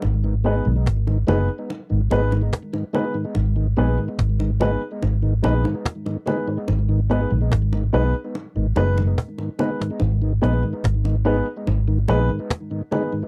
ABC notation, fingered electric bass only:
X:1
M:4/4
L:1/16
Q:1/4=72
K:G#m
V:1 name="Fingered electric bass" clef=bass
G,,,3 B,,, G,,,2 F,,, z2 G,,, G,,,2 z4 | G,,,2 A,,, z G,,,3 z G,,,2 A,,, z4 z | G,,,3 A,,, G,,,2 B,,, z2 G,,, F,,,2 z4 | G,,,2 A,,, z G,,,3 z G,,,2 A,,, z4 z |]